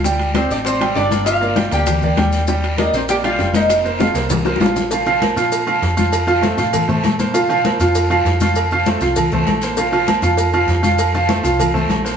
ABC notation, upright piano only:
X:1
M:4/4
L:1/8
Q:1/4=197
K:Bb
V:1 name="Upright piano"
[G,Gg]2 [Ccd]2 [Ccd] [G,Gg]2 [B,Bd]- | [B,Bd] [B,Bd] [G,Gg] [B,Bd]2 [B,Bd] [G,Gg]2 | [G,Gg]2 [B,Bd]2 [B,Bd] [G,Gg]2 [B,Bc]- | [B,Bc] [B,Bc] [F,Ff] [B,Bc]2 [B,Bc] [F,Ff]2 |
[F,Ff] [F,Ff] [B,Bc] [F,Ff]2 [F,Ff]2 [F,Ff]- | [F,Ff] [F,Ff] [A,Ac] [F,Ff]2 [A,Ac]2 [B,Bc] | [F,Ff] [F,Ff] [B,Bc] [F,Ff]2 [F,Ff]2 [F,Ff]- | [F,Ff] [F,Ff] [A,Ac] [F,Ff]2 [A,Ac]2 [B,Bc] |
[F,Ff] [F,Ff] [B,Bc] [F,Ff]2 [F,Ff]2 [F,Ff]- | [F,Ff] [F,Ff] [A,Ac] [F,Ff]2 [A,Ac]2 [B,Bc] |]